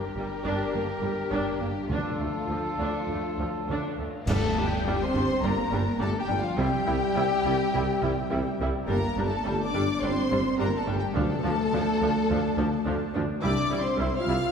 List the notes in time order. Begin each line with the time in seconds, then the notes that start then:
Already playing: G3 D4 G4 A#4
0.16 G1 G2 G3
0.45 G1 G2 D4
0.73 G1 G2 A#3
1.01 G1 G2 G3
1.31 G1 G2 D4
1.60 G1 G2 A#3
1.89 D2 D3 F3 D4 F4 A4
2.19 D2 A3
2.48 D2 F3
2.78 D2 D4
3.07 D2
3.12 A3
3.38 D2 F3
3.68 D2 D4
3.98 D2 A3
4.27 G1 G2 G3 A3 D4 A4 A5, concert bass drum, crash
4.56 G1 G2 G3 D4
4.66 G3 G4 G5
4.84 G1 G2 G3 D4
5.04 C4 C5 C6
5.13 G1 G2 G3 D4
5.42 G1 G2 G3 A#3 D4 A#4 A#5
5.71 G1 G2 G3 D4
5.99 G1 G2 G3 A3 D4 A4 A5
6.20 G3 G4 G5
6.28 G1 G2 G3 D4
6.40 F3 F4 F5
6.56 C2 C3 G3 E4 G4 G5
6.86 C2 C3 G3 E4
7.16 C2 C3 G3 E4
7.44 C2 C3 G3 E4
7.73 C2 C3 G3 E4
8.02 C2 C3 G3 E4
8.31 C2 C3 G3 E4
8.59 C2 C3 G3 E4
8.87 G1 G2 G3 A#3 D4 A#4 A#5
9.18 G1 G2 G3 D4
9.26 A3 A4 A5
9.45 G1 G2 G3 D4
9.64 D4 D5 D6
9.74 G1 G2 G3 D4
10.01 G1 G2 G3 C4 D4 C5 C6
10.31 G1 G2 G3 D4
10.58 G1 G2 G3 A#3 D4 A#4 A#5
10.77 A3 A4 A5
10.87 G1 G2 G3 D4
10.96 G4 G5
11.02 G3
11.14 D2 D3 F3 D4 A4 A5
11.20 A3
11.44 D2 F3 D4
11.73 D2 F3 D4
12.01 D2 F3 D4
12.29 D2 F3 D4
12.57 D2 F3 D4
12.86 D2 F3 D4
13.15 D2 F3 D4
13.42 C2 G3 D4 E4 D5 D6
13.71 C2 G3 E4
13.80 C4 C5 C6
13.99 C2 G3 E4
14.18 F4 F5 F6
14.26 C2 G3 E4